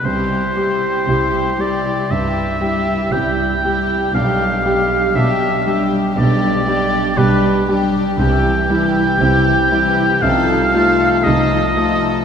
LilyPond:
<<
  \new Staff \with { instrumentName = "Oboe" } { \time 4/4 \key c \major \tempo 4 = 59 c''4. d''8 e''4 g''4 | f''4 e''8 r8 d''4 b'8 r8 | g''2 f''4 ees''4 | }
  \new Staff \with { instrumentName = "Violin section" } { \time 4/4 \key c \major g'8 g'8 g'8 g'8 g'8 g'8 g'8 g'8 | g'8 g'8 g'8 g'8 g'8 g'8 g'8 g'8 | g'8 g'8 g'8 g'8 a'8 a'8 a'8 a'8 | }
  \new Staff \with { instrumentName = "Grand piano" } { \time 4/4 \key c \major c,8 <g g'>8 <e' g'>8 <g g'>8 g,8 <g g'>8 <e' g'>8 <g g'>8 | b,,8 <g g'>8 <d' g'>8 <g g'>8 b,,8 <g g'>8 <d' g'>8 <g g'>8 | c,8 <g e'>8 <c' e'>8 <g e'>8 c,8 <a f'>8 <ees' f'>8 <a f'>8 | }
  \new Staff \with { instrumentName = "Viola section" } { \time 4/4 \key c \major <g e'>8 <g e'>8 <g e'>8 <g e'>8 <g e'>8 <g e'>8 <g e'>8 <g e'>8 | <g d'>8 <g d'>8 <g d'>8 <g d'>8 <g d'>8 <g d'>8 <g d'>8 <g d'>8 | <e e'>8 <e e'>8 <e e'>8 <e e'>8 <f ees'>8 <f ees'>8 <f ees'>8 <f ees'>8 | }
  \new Staff \with { instrumentName = "Cello section" } { \clef bass \time 4/4 \key c \major c4 c4 c4 c4 | b,4 b,4 b,4 b,4 | c4 c4 c4 c4 | }
  \new Staff \with { instrumentName = "Double bass section" } { \clef bass \time 4/4 \key c \major c,4 c,4 c,4 c,4 | b,,4 b,,4 b,,4 b,,4 | c,4 c,4 c,4 c,4 | }
>>